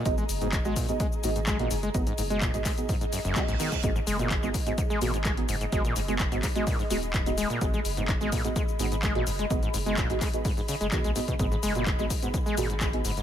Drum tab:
HH |x-oxx-oxx-oxxxox|xxoxxxoxoxoxxxox|x-oxx-oxx-oxxxox|xxoxxxoxo-oxxxox|
SH |xxxxxxxxxxxxx-xx|xxxxxxxxxxxxxxxx|xxxxxxxxxxxxx-xx|xxxxxxxxxxxxxxxx|
CP |----x-------x---|----x-x-----x---|----x-------x---|----x-x-----x---|
BD |o---o-o-o---o---|o---o-o-o---o--o|o---o-o-o---o---|o---o-o-o---o---|

HH |x-oxx-oxx-oxxxox|xxoxxxoxo-oxxxox|x-oxx-oxx-oxxxox|
SH |xxxxxxxxxxxxx-xx|xxxxxxxxxxxxxxxx|xxxxxxxxxxxxx-xx|
CP |----x-------x---|----x-x-----x---|----x-------x---|
BD |o---o-o-o---o---|o---o-o-o---o--o|o---o-o-o---o---|